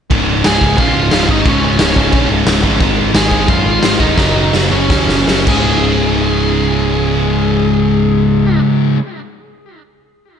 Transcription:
0.10 C#1 C#2 G#2 C#3, kick, crash
0.44 C#1 C#2 G#2 C#3 G#4 G#5, snare, crash
0.60 C#1 C#2 G#2 C#3, kick
0.77 A#1 C#2 G#2 C#3 F4 F5, kick, crash
0.95 C#1
1.11 C#2 G#2 C#3, snare, crash
1.28 G#1 C#2 G#2 C#3 D#4 D#5, kick
1.45 C#1 C#2 G#2 C#3 C#4, kick, crash
1.49 C#5
1.64 C#4 C#5
1.78 C#1 C#2 G#2 C#3, snare, crash
1.96 C#1 C#2 G#2 C#3, kick
2.12 A#1 C#2 G#2 C#3, kick, crash
2.29 C#1
2.47 C#1 C#2 G#2 C#3, snare, crash
2.64 G#1 C#2 G#2 C#3, kick
2.80 G#1 G#2 D#3 G#3, kick, crash
3.14 G#1 G#2 D#3 G#3 G#4 G#5, snare, crash
3.31 G#2 D#3 G#3, kick
3.48 F#2 G#2 D#3 G#3 F4 F5, kick, crash
3.65 G#1
3.82 G#1 G#2 D#3 G#3, snare, crash
4.00 D#1 G#2 D#3 G#3 D#4 D#5, kick
4.17 F#1 F#2 C#3 F#3 D#4 D#5, kick, snare
4.53 F#1 F#2 C#3 F#3, snare
4.71 F#1 F#2 C#3 F#3 C#4 C#5
4.90 D#2 F#2 C#3 F#3, kick, snare
5.08 F#1, snare
5.26 F#1 F#2 C#3 F#3, snare
5.46 C#1 C#2 G#2 C#3 G#3 G#4, kick, crash
5.50 F4

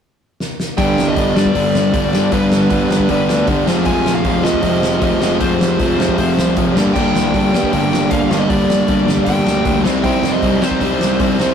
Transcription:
0.40 snare
0.60 snare
0.77 G1 G2 D3 G3 B3 D4 G5, kick, open hi-hat
0.98 C2, snare
1.07 D#5
1.16 G1 G2 D3 G3 B3 D4, kick, open hi-hat
1.35 G2 D3 G3 B3 D4 D5, snare
1.45 kick
1.53 G1 G2 D3 G3 B3 D4, kick, open hi-hat
1.75 G1, snare
1.92 G1 G2 D3 G3 B3 D4, kick, open hi-hat
2.13 G1 G2 D3 G3 B3 D4, snare
2.32 G1 G2 D3 G3 B3 D4 B4, kick, open hi-hat
2.51 G1, snare
2.69 G1 G2 D3 G3 B3 D4, kick, open hi-hat
2.89 G1 G2 D3 G3 B3 D4, snare
3.00 kick
3.09 G1 G2 D3 G3 B3 D4 B4, kick, open hi-hat
3.28 D2, snare
3.47 G1 G2 D3 G3 B3 D4, kick, open hi-hat
3.66 F1 F2 C3 F3 G#3 C4, snare
3.85 F1 F2 C3 F3 G#3 C4 G#5, kick, open hi-hat
4.05 A#1, snare
4.15 F5
4.24 F1 F2 C3 F3 G#3 C4, kick, open hi-hat
4.43 F2 C3 F3 G#3 C4 D#5, snare
4.54 kick
4.62 F1 F2 C3 F3 G#3 C4, kick, open hi-hat
4.83 F1, snare
5.02 F1 F2 C3 F3 G#3 C4, kick, open hi-hat
5.21 F1 F2 C3 F3 G#3 C4, snare
5.40 F1 F2 C3 F3 G#3 C4 C5, kick, open hi-hat
5.61 F1, snare
5.79 F1 F2 C3 F3 G#3 C4, kick, open hi-hat
5.97 F1 F2 C3 F3 G#3 C4, snare
6.09 kick
6.17 F1 F2 C3 F3 G#3 C4 C5, kick, open hi-hat
6.37 C2, snare
6.56 F1 F2 C3 F3 G#3 C4, kick, open hi-hat
6.75 G1 G2 D3 G3 A#3 D4, snare
6.94 G1 G2 D3 G3 A#3 D4 G5, kick, crash
7.15 C2, snare
7.34 G1 G2 D3 G3 A#3 D4, kick, open hi-hat
7.53 G2 D3 G3 A#3 D4, snare
7.63 kick
7.72 G1 G2 D3 G3 A#3 D4 G5, kick, open hi-hat
7.93 G1, snare
8.10 G1 G2 D3 G3 A#3 D4 F5, kick, open hi-hat
8.31 G1 G2 D3 G3 A#3 D4, snare
8.38 D#5
8.49 G1 G2 D3 G3 A#3 D4 D5, kick, open hi-hat
8.69 G1, snare
8.88 G1 G2 D3 G3 A#3 D4, kick, open hi-hat
9.08 G1 G2 D3 G3 A#3 D4, snare
9.17 kick
9.24 G1 G2 D3 A#3 G5, kick, open hi-hat
9.28 G3 D4
9.45 D2, snare
9.64 D2 G2 D3 G3 A#3 D4, kick, open hi-hat
9.84 C2 C3 G3 C4 D#4, snare
10.03 C2 C3 G3 C4 D#4 G5, kick, open hi-hat
10.23 F2, snare
10.32 D#5
10.42 C2 C3 G3 C4 D#4, kick, open hi-hat
10.60 C3 G3 C4 D#4 C5, snare
10.71 kick
10.80 C2 C3 G3 C4 D#4, kick, open hi-hat
11.00 C2, snare
11.19 C2 C3 G3 C4 D#4, kick, open hi-hat
11.39 C2 C3 G3 C4 D#4, snare

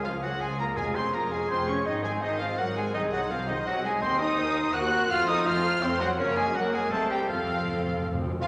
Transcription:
0.03 C#2 F3 F4 G#4 F5
0.22 F#3 G#3 F#4 G#4 F#5
0.40 C#2 F3 G#3 F4 G#4 G#5
0.59 G#3 A#3 G#4 A#4 A#5
0.76 F1 F2 G#3 F4 G#4 G#5
0.94 C4 C#4 F4 C5 C6
1.13 F1 A#3 F4 G#4 A#4 A#5
1.31 G#3 C#4 F4 G#4 G#5
1.49 F1 C4 F4 G#4 C5 C6
1.67 C#4 F4 C#5 C#6
1.85 G#1 D#3 D#4 G#4 D#5
2.04 G#3 C4 G#4 C5 G#5
2.21 G#1 D#3 D#4 G#4 C5 D#5
2.39 F3 C4 F4 C5 F5
2.57 G#1 F#3 D#4 F#4 G#4 A#4 F#5
2.76 G#3 C4 G#4 C5 G#5
2.94 C2 D#3 C4 D#4 G#4 D#5
3.12 F#3 D#4 F#4 C5 F#5
3.30 C2 F3 C4 F4 G#4 C5 F5
3.48 D#3 D#4 C5 D#5
3.65 C2 F#3 C4 F#4 G#4 D#5 F#5
3.84 G#3 D#4 G#4 C5 G#5
4.01 D#2 A#3 C4 A#4 C5 D#5 C6
4.19 C4 D#4 C5 D#5 D#6
4.38 D#2 A#3 A#4 C5
4.57 C4 C5
4.73 D#2 A#3 F#4 A#4 F#5 F#6
4.93 C4 C5
5.09 F2 A3 F4 A4 F5 F6
5.28 C4 D#4 C5 D#5 D#6
5.46 F2 A3 F4 A4 C5 F5 F6
5.65 C4 C5
5.82 F2 A3 C4 A4 C5 C6
6.00 F#3 C4 F#4 C5 F#5
6.19 F#2 C#3 A#3 C#4 A#4 C#5
6.37 G#3 G#4 G#5
6.55 F#3 A#3 F#4 A#4 F#5 G#5
6.60 F#5
6.73 G#3 G#4 G#5
6.91 C2 A3 C4 A4 A#4 C5 A5
7.10 G3 G4 G5
7.28 F2 F3 C4 F4 A4 F5
7.37 F2
7.44 F2
7.52 F2
7.59 F2
7.67 F2
7.75 F2
7.83 F2
7.91 F2
7.98 F2
8.06 F2
8.13 F2
8.21 F2
8.29 F2
8.41 A#1 A#2 F3 C#4 F4 F5

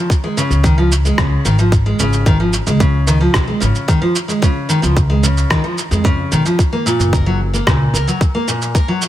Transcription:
0.10 kick, cabasa
0.24 G#3
0.37 C#3, cabasa
0.50 C#2, cabasa
0.63 D#3, kick, cabasa
0.78 F3
0.92 cabasa
1.05 G#3, cabasa
1.18 C#2 C#3, kick, cross-stick, cabasa
1.45 G#1 D#3, cabasa
1.59 F3, cabasa
1.72 kick, cabasa
1.86 G#3
1.99 G#1 C#3, cabasa
2.13 cabasa
2.26 D#3, kick, cabasa
2.40 F3
2.53 cabasa
2.67 C#2 G#3, cabasa
2.80 C#3, kick, cabasa
3.07 D#3, cabasa
3.21 F3
3.34 B1, kick, cross-stick, cabasa
3.48 G#3
3.60 G#1 C#3, cabasa
3.75 cabasa
3.88 D#3, kick, cabasa
4.02 F3
4.15 cabasa
4.28 G#3, cabasa
4.42 C#3, kick, cabasa
4.69 D#3, cabasa
4.82 C#2 F3, cabasa
4.97 kick, cabasa
5.10 G#3
5.23 C#3, cabasa
5.37 cabasa
5.50 D#3, kick, cross-stick, cabasa
5.64 F3
5.78 cabasa
5.91 F2 G#3, cabasa
6.04 C#3, kick, cabasa
6.32 B1 D#3, cabasa
6.45 F3, cabasa
6.59 kick, cabasa
6.73 A#3
6.86 A#2, cabasa
6.99 F#1, cabasa
7.13 A#4, kick, cabasa
7.26 F#3
7.53 A#3, cabasa
7.67 C#2 A#2, kick, cross-stick, cabasa
7.93 C#2 A#4, cabasa
8.07 F#3, cabasa
8.21 kick, cabasa
8.35 A#3
8.48 A#2, cabasa
8.62 cabasa
8.75 A#4, kick, cabasa
8.88 F#3
9.02 cabasa

